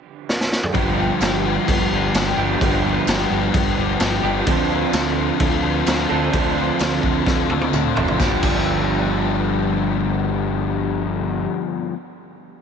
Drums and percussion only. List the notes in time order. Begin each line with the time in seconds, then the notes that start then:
0.29 snare
0.41 snare
0.52 snare
0.63 mid tom
0.75 kick, crash
1.21 snare, tambourine, crash
1.68 kick, crash
2.14 snare, tambourine, crash
2.61 kick, crash
3.07 snare, tambourine, crash
3.54 kick, crash
4.00 snare, tambourine, crash
4.47 kick, crash
4.93 snare, tambourine, crash
5.40 kick, crash
5.87 snare, tambourine, crash
6.33 kick, crash
6.79 snare, tambourine, crash
7.03 kick
7.26 kick, snare
7.50 high tom
7.61 high tom
7.73 mid tom, tambourine
7.97 floor tom
8.08 floor tom
8.20 kick, snare, tambourine
8.43 kick, crash, tambourine